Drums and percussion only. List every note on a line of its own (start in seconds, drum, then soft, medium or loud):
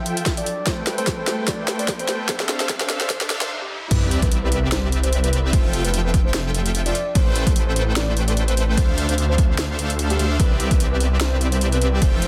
0.06 closed hi-hat medium
0.17 closed hi-hat medium
0.26 kick medium
0.26 snare medium
0.26 closed hi-hat medium
0.37 closed hi-hat medium
0.46 closed hi-hat medium
0.67 kick medium
0.67 snare medium
0.67 closed hi-hat medium
0.87 snare medium
0.87 closed hi-hat medium
0.98 closed hi-hat medium
1.07 kick loud
1.07 snare medium
1.07 closed hi-hat medium
1.27 snare medium
1.27 closed hi-hat medium
1.48 kick loud
1.48 snare medium
1.48 closed hi-hat medium
1.68 snare medium
1.68 closed hi-hat medium
1.79 closed hi-hat medium
1.88 kick loud
1.88 snare medium
1.88 closed hi-hat medium
1.99 closed hi-hat medium
2.09 snare medium
2.09 closed hi-hat medium
2.29 kick loud
2.29 snare medium
2.29 closed hi-hat medium
2.40 snare medium
2.49 snare loud
2.49 closed hi-hat medium
2.60 snare medium
2.60 closed hi-hat medium
2.69 kick loud
2.69 snare medium
2.69 closed hi-hat medium
2.81 snare medium
2.90 snare loud
2.90 closed hi-hat medium
3.01 snare medium
3.10 kick loud
3.10 snare loud
3.10 closed hi-hat medium
3.21 snare medium
3.30 snare loud
3.30 closed hi-hat medium
3.41 snare loud
3.41 closed hi-hat medium
3.91 kick loud
3.91 closed hi-hat medium
3.91 crash loud
4.11 closed hi-hat medium
4.22 kick loud
4.22 closed hi-hat medium
4.32 closed hi-hat medium
4.52 closed hi-hat medium
4.72 snare loud
4.72 closed hi-hat medium
4.92 closed hi-hat medium
5.03 closed hi-hat medium
5.13 closed hi-hat medium
5.24 closed hi-hat medium
5.33 closed hi-hat medium
5.53 kick loud
5.53 closed hi-hat medium
5.73 closed hi-hat medium
5.85 closed hi-hat medium
5.94 closed hi-hat medium
6.14 kick loud
6.14 closed hi-hat medium
6.34 snare loud
6.34 closed hi-hat medium
6.54 closed hi-hat medium
6.66 closed hi-hat medium
6.75 closed hi-hat medium
6.86 closed hi-hat medium
6.95 closed hi-hat medium
7.15 kick loud
7.15 closed hi-hat medium
7.36 closed hi-hat medium
7.47 kick loud
7.47 closed hi-hat medium
7.56 closed hi-hat medium
7.76 closed hi-hat medium
7.96 snare loud
7.96 closed hi-hat medium
8.17 closed hi-hat medium
8.28 closed hi-hat medium
8.37 closed hi-hat medium
8.48 closed hi-hat medium
8.57 closed hi-hat medium
8.77 kick loud
8.77 closed hi-hat medium
8.98 closed hi-hat medium
9.09 closed hi-hat medium
9.18 closed hi-hat medium
9.38 kick loud
9.38 closed hi-hat medium
9.59 snare loud
9.59 closed hi-hat medium
9.79 closed hi-hat medium
9.90 closed hi-hat medium
9.99 closed hi-hat medium
10.10 closed hi-hat medium
10.19 closed hi-hat medium
10.40 kick loud
10.40 closed hi-hat medium
10.60 closed hi-hat medium
10.71 kick loud
10.71 closed hi-hat medium
10.80 closed hi-hat medium
11.00 closed hi-hat medium
11.21 snare loud
11.21 closed hi-hat medium
11.41 closed hi-hat medium
11.52 closed hi-hat medium
11.61 closed hi-hat medium
11.72 closed hi-hat medium
11.82 closed hi-hat medium
12.02 kick loud
12.02 closed hi-hat medium
12.22 closed hi-hat medium